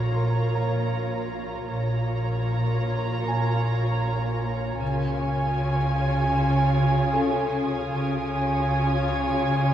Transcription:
Already playing: A#1 A#2 F4 A#4 C#5 F5 A#5 F6
0.13 A#2 C6
0.55 A#5
0.92 A#3
1.68 A#1 A#2 F4 A#4 C#5 F5 A#5
2.08 A#2
2.47 A#2
2.86 A#2
3.24 A#2
3.28 G#5
4.03 A#3
4.42 A#3
4.79 C#2 C#3 F4 C#5 F5 G#5
5.19 C#3
5.58 C#3
5.96 C#3
6.35 C#3 D#6
6.75 C#3
7.13 C#4 A4 G#5
7.53 C#4
7.90 C#2 C#3 F4 C#5 F5 G#5
8.31 C#3
8.70 C#3
9.09 C#3
9.47 C#3

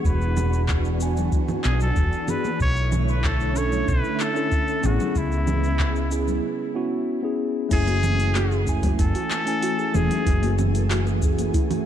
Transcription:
Already playing: E3 B3 D4 F#4 G#4
0.05 E1 D4 B4, kick, shaker
0.21 shaker
0.37 high conga, low conga, shaker
0.53 shaker
0.69 kick, clap, shaker
0.85 shaker
0.98 B3 D4 F#4, shaker
1.02 G#5
1.17 low conga, shaker
1.32 kick, shaker
1.49 high conga, low conga, shaker
1.64 B1 G#4, clap, shaker
1.80 A4, low conga, shaker
1.96 E1, kick, shaker
2.13 shaker
2.27 B3 D4 F#4 G#4 B4, low conga, shaker
2.44 high conga, shaker
2.60 B1 D3 A3 E4 C#5, kick, shaker
2.76 shaker
2.92 low conga, shaker
3.06 C#5, shaker
3.10 B4
3.24 A4, kick, clap, shaker
3.40 shaker
3.54 C#4 D4 E4 C#5, shaker
3.58 A4
3.72 low conga, shaker
3.88 B1 B4, kick, shaker
4.04 shaker
4.20 A4, clap, shaker
4.35 C#4 D4 E4 A4, shaker
4.52 kick, shaker
4.68 shaker
4.81 A1 B3 C#4 E4, low conga, shaker
4.85 F#4 G#4
5.00 low conga, shaker
5.16 C#2 C#3 G#3 B3 E4, kick, shaker
5.32 shaker
5.47 high conga, low conga, shaker
5.64 shaker
5.79 kick, clap, shaker
5.96 shaker
6.10 B3 C#4 E4 G#4, shaker
6.27 low conga, shaker
6.74 B3 C#4 E4 F#4
7.22 B3 C#4 E4 G#4
7.69 F#1 E3 A3 C#4 E4 F#4 G#4 G#5, kick, open hi-hat, crash, shaker
7.73 G#4
7.88 F#4, open hi-hat, high conga, shaker
8.03 low conga, shaker
8.20 open hi-hat, shaker
8.35 F#4, clap, open hi-hat, high conga, shaker
8.52 G#4, shaker
8.65 A3 C#4 E4, kick, shaker
8.69 G#5
8.83 kick, open hi-hat, high conga, low conga, shaker
8.99 F#1 E4 A4, kick, open hi-hat, shaker
9.15 F#4, open hi-hat, shaker
9.31 clap, high conga, shaker
9.46 A3 C#4 E4 G#5, open hi-hat, shaker
9.63 F#4, open hi-hat, shaker
9.79 G#4, shaker
9.92 E1 A3 C#4 E4 G#4, high conga, low conga, shaker
9.97 G#4
10.11 open hi-hat, low conga, shaker
10.26 F#1 E4, kick, open hi-hat, shaker
10.43 F#4, open hi-hat, high conga, shaker
10.59 low conga, shaker
10.75 open hi-hat, shaker
10.90 F#4, clap, open hi-hat, high conga, shaker
11.07 G#4, shaker
11.20 A3 C#4 E4, kick, shaker
11.24 G#4
11.39 open hi-hat, high conga, shaker
11.54 E4, kick, open hi-hat, shaker
11.70 F#4, open hi-hat, low conga, shaker

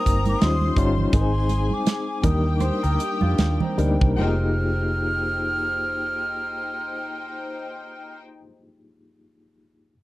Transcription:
Already playing: G3 A#3 C4 D#4 A#4 A#5 D#6
0.06 G1, kick, closed hi-hat, muted conga
0.25 D#6, closed hi-hat, high conga
0.41 D#2 G3 C#4 D#4 F4 C5 C6, snare, closed hi-hat, muted conga
0.61 high conga
0.76 G1 G3 C#4 D#4 F4 C#5 C6, kick, closed hi-hat
0.98 low conga
1.13 G#1 G#3 C4 D#4 G#4 A#4 G#5 C6, kick, closed hi-hat, muted conga
1.21 C5
1.49 closed hi-hat, muted conga, high conga
1.70 D6, high conga
1.86 snare, closed hi-hat, muted conga
2.23 D#2 G3 A#3 D4 D#4 G4 A#4 G5 D#6, kick, closed hi-hat, muted conga, low conga
2.57 C5 D6, closed hi-hat, muted conga, high conga
2.64 D#6
2.83 D2 G4 A#4, closed hi-hat
2.99 D#4 G4, closed hi-hat
3.21 F2 D4 F4, high conga
3.38 D#2, snare, closed hi-hat, muted conga
3.60 C4 D#4, high conga, low conga
3.78 D2 G3 A#3 D4 D#4 A#4, closed hi-hat, muted conga
4.01 C2, kick, low conga
4.17 F1 A#3 D#4 F4 G4 C5 G5 F6, high conga
4.21 G#4

